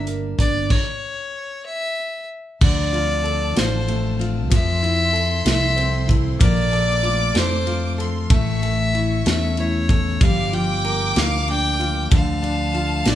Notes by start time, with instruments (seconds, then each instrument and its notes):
Already playing: fretless electric bass G1, grand piano G3 D4 A#4, steel-string acoustic guitar G3 A#3 A#4
0.07 steel-string acoustic guitar D4, grand piano A#4, closed hi-hat
0.38 fretless electric bass G1, steel-string acoustic guitar A#3, grand piano D4, violin D5, kick, closed hi-hat
0.70 violin C#5, kick, crash
1.66 violin E5
2.61 fretless electric bass D2, grand piano D3, steel-string acoustic guitar F3, violin D5, violin section A5, kick, crash
2.92 steel-string acoustic guitar C4, grand piano F4, ride
3.24 steel-string acoustic guitar D4, grand piano A4, ride
3.56 fretless electric bass A1, grand piano F4, steel-string acoustic guitar A4, violin C5, snare, ride
3.88 grand piano A3, steel-string acoustic guitar D4, ride
4.19 steel-string acoustic guitar C4, grand piano F4, ride
4.50 fretless electric bass F2, grand piano F3, steel-string acoustic guitar F3, violin E5, violin section C6, kick, ride
4.82 steel-string acoustic guitar C4, grand piano E4, ride
5.13 steel-string acoustic guitar E4, grand piano A4, ride
5.44 fretless electric bass C2, grand piano E4, steel-string acoustic guitar A4, violin E5, snare, ride
5.76 grand piano C4, steel-string acoustic guitar E4, ride
6.07 steel-string acoustic guitar C4, grand piano E4, kick, ride
6.39 fretless electric bass A#1, steel-string acoustic guitar F3, grand piano A#3, violin D5, violin section D6, kick, ride
6.72 steel-string acoustic guitar F3, grand piano A4, ride
7.03 steel-string acoustic guitar A3, grand piano F4, ride
7.34 fretless electric bass F2, steel-string acoustic guitar D4, grand piano A4, violin C5, snare, ride
7.67 steel-string acoustic guitar A3, grand piano F4, ride
7.98 steel-string acoustic guitar F3, grand piano A4, violin section C6, ride
8.29 fretless electric bass A1, steel-string acoustic guitar E3, grand piano A3, violin E5, violin section C#6, kick, ride
8.62 steel-string acoustic guitar E3, grand piano A4, ride
8.92 steel-string acoustic guitar A3, grand piano E4, violin section C#6, ride
9.26 fretless electric bass E2, steel-string acoustic guitar C#4, grand piano A4, violin E5, snare, ride
9.57 steel-string acoustic guitar A3, grand piano E4, violin C#5, ride
9.89 steel-string acoustic guitar E3, grand piano A4, kick, ride
10.21 fretless electric bass G1, steel-string acoustic guitar F3, grand piano G3, violin F5, violin section D6, kick, ride
10.52 steel-string acoustic guitar F3, grand piano F4, violin G5, ride
10.84 steel-string acoustic guitar A#3, grand piano A#4, ride
11.15 fretless electric bass D2, steel-string acoustic guitar D4, grand piano F4, violin F5, snare, ride
11.47 steel-string acoustic guitar A#3, grand piano D4, violin G5, ride
11.79 steel-string acoustic guitar F3, grand piano F4, ride
12.11 fretless electric bass D2, grand piano D3, steel-string acoustic guitar F3, violin F5, violin section A5, kick, ride
12.42 steel-string acoustic guitar F3, grand piano D4, ride
12.74 steel-string acoustic guitar A3, grand piano F4, ride
13.05 fretless electric bass A1, steel-string acoustic guitar D4, grand piano D4, violin D5, snare, ride